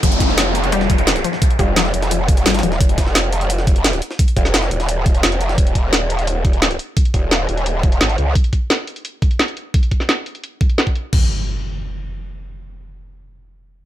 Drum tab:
CC |--------------------------------|--------------------------------|--------------------------------|--------------------------------|
HH |x-x-x---x---x-x-x---x-x-x-x-x---|x-x-x---x---x-x-x---x-x-xxxxx---|x-x-x---x---x-x-x---x-x-x-x-x---|x-x-x---x---x-x-x---x-x-x-x-x---|
SD |----o-o-o---------o-----o-o---o-|--------o-o---o---------oooo--o-|----o-o-o---------o-----o-o---o-|------o-o-o---o---------o-----o-|
BD |o---o---------------o-----------|o---o---------------o-----------|o---o---------------o-----------|o---o---------------o-----------|

CC |--------------------------------|--------------------------------|--------------------------------|--------------------------------|
HH |x-x-x---x---x-x-x---x-x-x-x-x---|x-x-x---x---x-x-x---x-x-x-x-x---|x-x-x---x---x-x-x---x-x-x-x-x---|x-x-x---x---x-x-x---x-x-x-x-x---|
SD |--------o---------------o-------|--------o---------------o-------|--------o---------------o-------|------o-o---------------o-------|
BD |o---o---------------o-----------|o---o---------------o-----------|o---o---------------o-----------|o---o---------------o-----o-----|

CC |x-------------------------------|--------------------------------|
HH |--------------------------------|--------------------------------|
SD |--------------------------------|--------------------------------|
BD |o-------------------------------|--------------------------------|